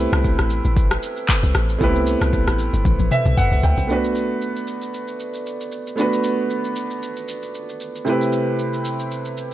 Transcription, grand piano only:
0, 0, Header, 1, 2, 480
1, 0, Start_track
1, 0, Tempo, 521739
1, 1663, Time_signature, 4, 2, 24, 8
1, 8775, End_track
2, 0, Start_track
2, 0, Title_t, "Grand piano"
2, 0, Program_c, 0, 0
2, 0, Control_c, 0, 64, 127
2, 0, Note_on_c, 0, 57, 77
2, 0, Note_on_c, 0, 60, 68
2, 0, Note_on_c, 0, 64, 70
2, 0, Note_on_c, 0, 67, 68
2, 0, Note_on_c, 0, 71, 82
2, 1616, Note_off_c, 0, 57, 0
2, 1627, Note_off_c, 0, 64, 0
2, 1633, Note_off_c, 0, 67, 0
2, 1639, Note_off_c, 0, 71, 0
2, 1642, Note_on_c, 0, 57, 75
2, 1650, Note_off_c, 0, 60, 0
2, 1653, Note_on_c, 0, 59, 55
2, 1665, Note_on_c, 0, 64, 70
2, 1677, Note_on_c, 0, 67, 69
2, 1689, Note_on_c, 0, 71, 83
2, 1711, Note_on_c, 0, 60, 72
2, 1722, Note_off_c, 0, 59, 0
2, 2866, Note_on_c, 0, 76, 77
2, 3088, Note_off_c, 0, 76, 0
2, 3105, Note_on_c, 0, 78, 78
2, 3327, Note_off_c, 0, 78, 0
2, 3345, Note_on_c, 0, 79, 72
2, 3536, Note_off_c, 0, 57, 0
2, 3548, Note_off_c, 0, 64, 0
2, 3554, Note_off_c, 0, 67, 0
2, 3559, Note_off_c, 0, 71, 0
2, 3562, Note_on_c, 0, 57, 66
2, 3567, Note_off_c, 0, 79, 0
2, 3571, Note_off_c, 0, 60, 0
2, 3575, Note_on_c, 0, 59, 61
2, 3586, Note_on_c, 0, 62, 60
2, 3596, Control_c, 0, 64, 0
2, 3598, Note_on_c, 0, 66, 60
2, 3610, Note_on_c, 0, 71, 76
2, 3734, Control_c, 0, 64, 127
2, 5456, Note_off_c, 0, 57, 0
2, 5463, Note_off_c, 0, 59, 0
2, 5468, Note_off_c, 0, 62, 0
2, 5474, Note_off_c, 0, 66, 0
2, 5480, Note_off_c, 0, 71, 0
2, 5480, Note_on_c, 0, 57, 69
2, 5492, Note_on_c, 0, 59, 63
2, 5503, Note_on_c, 0, 62, 62
2, 5516, Note_on_c, 0, 66, 63
2, 5527, Note_on_c, 0, 71, 78
2, 7375, Note_off_c, 0, 57, 0
2, 7381, Note_off_c, 0, 59, 0
2, 7387, Note_off_c, 0, 62, 0
2, 7393, Note_off_c, 0, 66, 0
2, 7398, Note_off_c, 0, 71, 0
2, 7402, Note_on_c, 0, 48, 70
2, 7411, Note_on_c, 0, 57, 67
2, 7420, Note_on_c, 0, 60, 66
2, 7430, Note_on_c, 0, 64, 62
2, 7437, Control_c, 0, 64, 0
2, 7439, Note_on_c, 0, 67, 62
2, 7448, Note_on_c, 0, 71, 78
2, 7578, Control_c, 0, 64, 127
2, 8775, Note_off_c, 0, 48, 0
2, 8775, Note_off_c, 0, 57, 0
2, 8775, Note_off_c, 0, 60, 0
2, 8775, Note_off_c, 0, 64, 0
2, 8775, Note_off_c, 0, 67, 0
2, 8775, Note_off_c, 0, 71, 0
2, 8775, End_track
0, 0, End_of_file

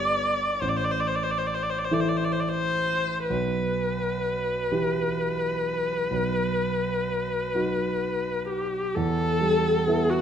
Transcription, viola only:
0, 0, Header, 1, 2, 480
1, 0, Start_track
1, 0, Key_signature, 1, "minor"
1, 0, Tempo, 842697
1, 829, Tempo, 892857
1, 1309, Tempo, 941915
1, 1783, Time_signature, 12, 3, 24, 8
1, 4669, Tempo, 914634
1, 5337, End_track
2, 0, Start_track
2, 0, Title_t, "Viola"
2, 0, Program_c, 0, 41
2, 0, Note_on_c, 0, 74, 61
2, 352, Note_on_c, 0, 72, 46
2, 360, Note_off_c, 0, 74, 0
2, 393, Note_on_c, 0, 74, 46
2, 401, Note_off_c, 0, 72, 0
2, 436, Note_on_c, 0, 72, 52
2, 445, Note_off_c, 0, 74, 0
2, 480, Note_on_c, 0, 74, 53
2, 489, Note_off_c, 0, 72, 0
2, 519, Note_on_c, 0, 72, 51
2, 527, Note_off_c, 0, 74, 0
2, 569, Note_on_c, 0, 74, 52
2, 578, Note_off_c, 0, 72, 0
2, 610, Note_on_c, 0, 72, 49
2, 618, Note_off_c, 0, 74, 0
2, 658, Note_on_c, 0, 74, 49
2, 667, Note_off_c, 0, 72, 0
2, 702, Note_on_c, 0, 72, 47
2, 710, Note_off_c, 0, 74, 0
2, 745, Note_on_c, 0, 74, 51
2, 753, Note_off_c, 0, 72, 0
2, 787, Note_on_c, 0, 72, 45
2, 796, Note_off_c, 0, 74, 0
2, 833, Note_on_c, 0, 74, 44
2, 841, Note_off_c, 0, 72, 0
2, 878, Note_on_c, 0, 72, 48
2, 886, Note_off_c, 0, 74, 0
2, 921, Note_on_c, 0, 74, 49
2, 929, Note_off_c, 0, 72, 0
2, 959, Note_on_c, 0, 72, 47
2, 967, Note_off_c, 0, 74, 0
2, 1005, Note_on_c, 0, 74, 48
2, 1013, Note_off_c, 0, 72, 0
2, 1038, Note_on_c, 0, 72, 47
2, 1046, Note_off_c, 0, 74, 0
2, 1086, Note_on_c, 0, 74, 44
2, 1094, Note_off_c, 0, 72, 0
2, 1124, Note_on_c, 0, 72, 46
2, 1132, Note_off_c, 0, 74, 0
2, 1169, Note_on_c, 0, 74, 47
2, 1177, Note_off_c, 0, 72, 0
2, 1213, Note_on_c, 0, 72, 47
2, 1221, Note_off_c, 0, 74, 0
2, 1252, Note_on_c, 0, 74, 45
2, 1260, Note_off_c, 0, 72, 0
2, 1294, Note_on_c, 0, 72, 47
2, 1302, Note_off_c, 0, 74, 0
2, 1336, Note_on_c, 0, 74, 41
2, 1344, Note_off_c, 0, 72, 0
2, 1381, Note_on_c, 0, 72, 57
2, 1388, Note_off_c, 0, 74, 0
2, 1790, Note_off_c, 0, 72, 0
2, 1796, Note_on_c, 0, 71, 50
2, 4418, Note_off_c, 0, 71, 0
2, 4437, Note_on_c, 0, 67, 53
2, 4673, Note_on_c, 0, 69, 74
2, 4681, Note_off_c, 0, 67, 0
2, 5275, Note_on_c, 0, 66, 61
2, 5283, Note_off_c, 0, 69, 0
2, 5337, Note_off_c, 0, 66, 0
2, 5337, End_track
0, 0, End_of_file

